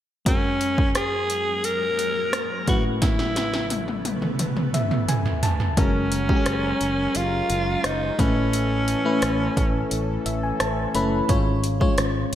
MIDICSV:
0, 0, Header, 1, 7, 480
1, 0, Start_track
1, 0, Tempo, 689655
1, 180, Time_signature, 4, 2, 24, 8
1, 8596, End_track
2, 0, Start_track
2, 0, Title_t, "Alto saxophone"
2, 0, Program_c, 0, 65
2, 196, Note_on_c, 0, 61, 80
2, 640, Note_off_c, 0, 61, 0
2, 674, Note_on_c, 0, 68, 85
2, 1149, Note_on_c, 0, 70, 98
2, 1160, Note_off_c, 0, 68, 0
2, 1865, Note_off_c, 0, 70, 0
2, 1869, Note_on_c, 0, 66, 81
2, 1975, Note_off_c, 0, 66, 0
2, 2107, Note_on_c, 0, 64, 81
2, 2796, Note_off_c, 0, 64, 0
2, 4027, Note_on_c, 0, 61, 93
2, 4985, Note_on_c, 0, 65, 98
2, 4995, Note_off_c, 0, 61, 0
2, 5467, Note_on_c, 0, 63, 83
2, 5478, Note_off_c, 0, 65, 0
2, 5706, Note_on_c, 0, 61, 86
2, 5716, Note_off_c, 0, 63, 0
2, 7143, Note_off_c, 0, 61, 0
2, 8596, End_track
3, 0, Start_track
3, 0, Title_t, "FM electric piano"
3, 0, Program_c, 1, 5
3, 175, Note_on_c, 1, 56, 52
3, 181, Note_on_c, 1, 61, 52
3, 185, Note_on_c, 1, 42, 53
3, 187, Note_on_c, 1, 66, 49
3, 192, Note_on_c, 1, 70, 58
3, 300, Control_c, 1, 64, 127
3, 1830, Note_off_c, 1, 56, 0
3, 1833, Note_off_c, 1, 61, 0
3, 1835, Note_off_c, 1, 42, 0
3, 1836, Note_off_c, 1, 66, 0
3, 1838, Note_off_c, 1, 70, 0
3, 1853, Note_on_c, 1, 57, 54
3, 1859, Note_on_c, 1, 61, 53
3, 1862, Note_on_c, 1, 45, 55
3, 1863, Note_on_c, 1, 33, 56
3, 1866, Note_on_c, 1, 64, 52
3, 1869, Control_c, 1, 64, 0
3, 1870, Note_on_c, 1, 71, 61
3, 1975, Control_c, 1, 64, 127
3, 3299, Note_on_c, 1, 76, 60
3, 3523, Note_off_c, 1, 76, 0
3, 3539, Note_on_c, 1, 80, 64
3, 3749, Note_off_c, 1, 57, 0
3, 3752, Note_off_c, 1, 61, 0
3, 3753, Note_off_c, 1, 45, 0
3, 3754, Note_off_c, 1, 33, 0
3, 3755, Note_off_c, 1, 64, 0
3, 3757, Note_off_c, 1, 71, 0
3, 3763, Note_off_c, 1, 80, 0
3, 3779, Note_on_c, 1, 81, 62
3, 4003, Note_off_c, 1, 81, 0
3, 4014, Note_on_c, 1, 56, 64
3, 4018, Note_on_c, 1, 61, 58
3, 4021, Note_on_c, 1, 66, 56
3, 4022, Note_on_c, 1, 70, 69
3, 4029, Control_c, 1, 64, 0
3, 4154, Control_c, 1, 64, 127
3, 4278, Note_off_c, 1, 56, 0
3, 4280, Note_off_c, 1, 61, 0
3, 4281, Note_off_c, 1, 66, 0
3, 4282, Note_off_c, 1, 70, 0
3, 4375, Note_on_c, 1, 56, 66
3, 4379, Note_on_c, 1, 61, 55
3, 4382, Note_on_c, 1, 66, 59
3, 4384, Note_on_c, 1, 67, 56
3, 4428, Note_off_c, 1, 67, 0
3, 4429, Note_on_c, 1, 68, 69
3, 5073, Note_off_c, 1, 56, 0
3, 5076, Note_off_c, 1, 61, 0
3, 5077, Note_off_c, 1, 66, 0
3, 5101, Note_off_c, 1, 68, 0
3, 5696, Note_on_c, 1, 57, 71
3, 5698, Note_on_c, 1, 61, 64
3, 5699, Note_on_c, 1, 45, 54
3, 5701, Note_on_c, 1, 64, 65
3, 5703, Note_on_c, 1, 71, 76
3, 5710, Control_c, 1, 64, 0
3, 5825, Control_c, 1, 64, 127
3, 6178, Note_off_c, 1, 57, 0
3, 6179, Note_off_c, 1, 61, 0
3, 6180, Note_off_c, 1, 64, 0
3, 6182, Note_off_c, 1, 71, 0
3, 6297, Note_on_c, 1, 57, 81
3, 6299, Note_on_c, 1, 61, 72
3, 6302, Note_on_c, 1, 64, 70
3, 6305, Note_on_c, 1, 71, 83
3, 6392, Note_off_c, 1, 45, 0
3, 6995, Note_off_c, 1, 57, 0
3, 6996, Note_off_c, 1, 61, 0
3, 6997, Note_off_c, 1, 64, 0
3, 6998, Note_off_c, 1, 71, 0
3, 7141, Note_on_c, 1, 76, 61
3, 7252, Note_off_c, 1, 76, 0
3, 7262, Note_on_c, 1, 80, 62
3, 7373, Note_off_c, 1, 80, 0
3, 7381, Note_on_c, 1, 81, 66
3, 7604, Note_off_c, 1, 81, 0
3, 7616, Note_on_c, 1, 57, 79
3, 7620, Note_on_c, 1, 61, 73
3, 7621, Note_on_c, 1, 83, 63
3, 7622, Note_on_c, 1, 64, 72
3, 7626, Note_on_c, 1, 71, 86
3, 7792, Note_off_c, 1, 57, 0
3, 7794, Note_off_c, 1, 61, 0
3, 7795, Note_off_c, 1, 64, 0
3, 7797, Note_off_c, 1, 71, 0
3, 7844, Note_off_c, 1, 83, 0
3, 7854, Note_on_c, 1, 56, 79
3, 7857, Note_on_c, 1, 61, 73
3, 7859, Note_on_c, 1, 44, 70
3, 7860, Note_on_c, 1, 65, 70
3, 7862, Note_on_c, 1, 73, 87
3, 7869, Control_c, 1, 64, 0
3, 7998, Control_c, 1, 64, 127
3, 8118, Note_off_c, 1, 56, 0
3, 8120, Note_off_c, 1, 61, 0
3, 8121, Note_off_c, 1, 65, 0
3, 8122, Note_off_c, 1, 73, 0
3, 8215, Note_on_c, 1, 56, 83
3, 8218, Note_on_c, 1, 61, 74
3, 8221, Note_on_c, 1, 65, 74
3, 8222, Note_on_c, 1, 73, 85
3, 8552, Note_off_c, 1, 44, 0
3, 8596, Note_off_c, 1, 56, 0
3, 8596, Note_off_c, 1, 61, 0
3, 8596, Note_off_c, 1, 65, 0
3, 8596, Note_off_c, 1, 73, 0
3, 8596, End_track
4, 0, Start_track
4, 0, Title_t, "Analog polysynth"
4, 0, Program_c, 2, 90
4, 4018, Note_on_c, 2, 54, 70
4, 4018, Note_on_c, 2, 61, 73
4, 4018, Note_on_c, 2, 70, 80
4, 5671, Note_off_c, 2, 54, 0
4, 5671, Note_off_c, 2, 61, 0
4, 5671, Note_off_c, 2, 70, 0
4, 5700, Note_on_c, 2, 52, 73
4, 5700, Note_on_c, 2, 61, 73
4, 5700, Note_on_c, 2, 69, 86
4, 7832, Note_off_c, 2, 52, 0
4, 7832, Note_off_c, 2, 61, 0
4, 7832, Note_off_c, 2, 69, 0
4, 8596, End_track
5, 0, Start_track
5, 0, Title_t, "Ambient pad"
5, 0, Program_c, 3, 92
5, 183, Note_on_c, 3, 56, 70
5, 184, Note_on_c, 3, 54, 74
5, 184, Note_on_c, 3, 58, 82
5, 1845, Note_off_c, 3, 54, 0
5, 1845, Note_off_c, 3, 56, 0
5, 1845, Note_off_c, 3, 58, 0
5, 1860, Note_on_c, 3, 49, 73
5, 1860, Note_on_c, 3, 57, 65
5, 1860, Note_on_c, 3, 59, 83
5, 3999, Note_off_c, 3, 49, 0
5, 3999, Note_off_c, 3, 57, 0
5, 3999, Note_off_c, 3, 59, 0
5, 8596, End_track
6, 0, Start_track
6, 0, Title_t, "Fretless electric bass"
6, 0, Program_c, 4, 35
6, 4019, Note_on_c, 4, 30, 93
6, 4365, Note_off_c, 4, 30, 0
6, 4497, Note_on_c, 4, 30, 90
6, 4671, Note_off_c, 4, 30, 0
6, 4738, Note_on_c, 4, 30, 77
6, 4912, Note_off_c, 4, 30, 0
6, 4978, Note_on_c, 4, 30, 80
6, 5151, Note_off_c, 4, 30, 0
6, 5218, Note_on_c, 4, 30, 90
6, 5391, Note_off_c, 4, 30, 0
6, 5457, Note_on_c, 4, 30, 82
6, 5631, Note_off_c, 4, 30, 0
6, 5699, Note_on_c, 4, 33, 79
6, 6218, Note_off_c, 4, 33, 0
6, 6418, Note_on_c, 4, 33, 92
6, 6592, Note_off_c, 4, 33, 0
6, 6661, Note_on_c, 4, 33, 89
6, 6834, Note_off_c, 4, 33, 0
6, 6899, Note_on_c, 4, 33, 90
6, 7072, Note_off_c, 4, 33, 0
6, 7137, Note_on_c, 4, 33, 89
6, 7311, Note_off_c, 4, 33, 0
6, 7377, Note_on_c, 4, 33, 86
6, 7551, Note_off_c, 4, 33, 0
6, 7617, Note_on_c, 4, 30, 81
6, 7791, Note_off_c, 4, 30, 0
6, 7859, Note_on_c, 4, 32, 93
6, 8205, Note_off_c, 4, 32, 0
6, 8337, Note_on_c, 4, 32, 101
6, 8511, Note_off_c, 4, 32, 0
6, 8596, End_track
7, 0, Start_track
7, 0, Title_t, "Drums"
7, 182, Note_on_c, 9, 36, 94
7, 183, Note_on_c, 9, 42, 77
7, 252, Note_off_c, 9, 36, 0
7, 252, Note_off_c, 9, 42, 0
7, 423, Note_on_c, 9, 42, 55
7, 493, Note_off_c, 9, 42, 0
7, 544, Note_on_c, 9, 36, 76
7, 613, Note_off_c, 9, 36, 0
7, 661, Note_on_c, 9, 42, 79
7, 664, Note_on_c, 9, 37, 90
7, 730, Note_off_c, 9, 42, 0
7, 734, Note_off_c, 9, 37, 0
7, 903, Note_on_c, 9, 42, 60
7, 973, Note_off_c, 9, 42, 0
7, 1142, Note_on_c, 9, 42, 76
7, 1211, Note_off_c, 9, 42, 0
7, 1384, Note_on_c, 9, 42, 60
7, 1454, Note_off_c, 9, 42, 0
7, 1622, Note_on_c, 9, 37, 97
7, 1623, Note_on_c, 9, 42, 80
7, 1691, Note_off_c, 9, 37, 0
7, 1692, Note_off_c, 9, 42, 0
7, 1862, Note_on_c, 9, 42, 64
7, 1863, Note_on_c, 9, 36, 78
7, 1932, Note_off_c, 9, 42, 0
7, 1933, Note_off_c, 9, 36, 0
7, 2100, Note_on_c, 9, 38, 47
7, 2101, Note_on_c, 9, 36, 90
7, 2101, Note_on_c, 9, 42, 79
7, 2170, Note_off_c, 9, 36, 0
7, 2170, Note_off_c, 9, 38, 0
7, 2170, Note_off_c, 9, 42, 0
7, 2221, Note_on_c, 9, 38, 41
7, 2291, Note_off_c, 9, 38, 0
7, 2340, Note_on_c, 9, 38, 54
7, 2340, Note_on_c, 9, 42, 57
7, 2410, Note_off_c, 9, 38, 0
7, 2410, Note_off_c, 9, 42, 0
7, 2461, Note_on_c, 9, 38, 43
7, 2531, Note_off_c, 9, 38, 0
7, 2577, Note_on_c, 9, 42, 77
7, 2579, Note_on_c, 9, 48, 56
7, 2647, Note_off_c, 9, 42, 0
7, 2649, Note_off_c, 9, 48, 0
7, 2700, Note_on_c, 9, 48, 47
7, 2770, Note_off_c, 9, 48, 0
7, 2819, Note_on_c, 9, 48, 62
7, 2820, Note_on_c, 9, 42, 65
7, 2889, Note_off_c, 9, 42, 0
7, 2889, Note_off_c, 9, 48, 0
7, 2938, Note_on_c, 9, 47, 53
7, 3007, Note_off_c, 9, 47, 0
7, 3057, Note_on_c, 9, 42, 79
7, 3058, Note_on_c, 9, 47, 66
7, 3126, Note_off_c, 9, 42, 0
7, 3128, Note_off_c, 9, 47, 0
7, 3178, Note_on_c, 9, 47, 57
7, 3247, Note_off_c, 9, 47, 0
7, 3299, Note_on_c, 9, 45, 71
7, 3300, Note_on_c, 9, 42, 62
7, 3369, Note_off_c, 9, 45, 0
7, 3370, Note_off_c, 9, 42, 0
7, 3418, Note_on_c, 9, 45, 60
7, 3488, Note_off_c, 9, 45, 0
7, 3539, Note_on_c, 9, 42, 86
7, 3539, Note_on_c, 9, 45, 80
7, 3609, Note_off_c, 9, 42, 0
7, 3609, Note_off_c, 9, 45, 0
7, 3658, Note_on_c, 9, 43, 66
7, 3728, Note_off_c, 9, 43, 0
7, 3778, Note_on_c, 9, 42, 67
7, 3778, Note_on_c, 9, 43, 79
7, 3847, Note_off_c, 9, 43, 0
7, 3848, Note_off_c, 9, 42, 0
7, 3897, Note_on_c, 9, 43, 71
7, 3967, Note_off_c, 9, 43, 0
7, 4018, Note_on_c, 9, 36, 89
7, 4018, Note_on_c, 9, 42, 75
7, 4087, Note_off_c, 9, 42, 0
7, 4088, Note_off_c, 9, 36, 0
7, 4257, Note_on_c, 9, 42, 60
7, 4327, Note_off_c, 9, 42, 0
7, 4379, Note_on_c, 9, 36, 78
7, 4449, Note_off_c, 9, 36, 0
7, 4495, Note_on_c, 9, 42, 84
7, 4498, Note_on_c, 9, 37, 92
7, 4564, Note_off_c, 9, 42, 0
7, 4568, Note_off_c, 9, 37, 0
7, 4738, Note_on_c, 9, 42, 65
7, 4807, Note_off_c, 9, 42, 0
7, 4975, Note_on_c, 9, 42, 83
7, 5044, Note_off_c, 9, 42, 0
7, 5217, Note_on_c, 9, 42, 65
7, 5287, Note_off_c, 9, 42, 0
7, 5457, Note_on_c, 9, 37, 101
7, 5458, Note_on_c, 9, 42, 92
7, 5527, Note_off_c, 9, 37, 0
7, 5528, Note_off_c, 9, 42, 0
7, 5699, Note_on_c, 9, 36, 91
7, 5701, Note_on_c, 9, 42, 69
7, 5769, Note_off_c, 9, 36, 0
7, 5770, Note_off_c, 9, 42, 0
7, 5940, Note_on_c, 9, 42, 78
7, 6009, Note_off_c, 9, 42, 0
7, 6179, Note_on_c, 9, 42, 61
7, 6249, Note_off_c, 9, 42, 0
7, 6418, Note_on_c, 9, 42, 83
7, 6421, Note_on_c, 9, 37, 95
7, 6487, Note_off_c, 9, 42, 0
7, 6490, Note_off_c, 9, 37, 0
7, 6661, Note_on_c, 9, 36, 80
7, 6662, Note_on_c, 9, 42, 64
7, 6730, Note_off_c, 9, 36, 0
7, 6731, Note_off_c, 9, 42, 0
7, 6899, Note_on_c, 9, 42, 81
7, 6968, Note_off_c, 9, 42, 0
7, 7140, Note_on_c, 9, 42, 67
7, 7210, Note_off_c, 9, 42, 0
7, 7378, Note_on_c, 9, 37, 100
7, 7379, Note_on_c, 9, 42, 86
7, 7448, Note_off_c, 9, 37, 0
7, 7449, Note_off_c, 9, 42, 0
7, 7618, Note_on_c, 9, 42, 69
7, 7688, Note_off_c, 9, 42, 0
7, 7858, Note_on_c, 9, 42, 78
7, 7859, Note_on_c, 9, 36, 91
7, 7928, Note_off_c, 9, 36, 0
7, 7928, Note_off_c, 9, 42, 0
7, 8099, Note_on_c, 9, 42, 63
7, 8168, Note_off_c, 9, 42, 0
7, 8220, Note_on_c, 9, 36, 84
7, 8289, Note_off_c, 9, 36, 0
7, 8336, Note_on_c, 9, 42, 81
7, 8339, Note_on_c, 9, 37, 94
7, 8406, Note_off_c, 9, 42, 0
7, 8409, Note_off_c, 9, 37, 0
7, 8596, End_track
0, 0, End_of_file